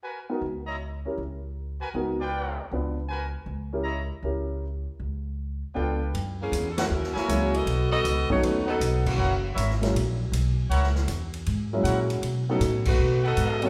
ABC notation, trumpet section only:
X:1
M:4/4
L:1/8
Q:"Swing" 1/4=158
K:F#mix
V:1 name="Trumpet section"
[FABg] z2 [Ecda] z4 | z [FABg] z [^EB=d=g]3 z2 | [FABg] z3 [Ecda] z3 | z6 [=FB=d=g]2 |
z3 [EAcf] z [EAcg]3 | z4 z [D=ABf]3 | [EAcf] z [EAce] z4 z | [EAcf] z4 z [EAcf] z |
z4 z [D=ABf]3 |]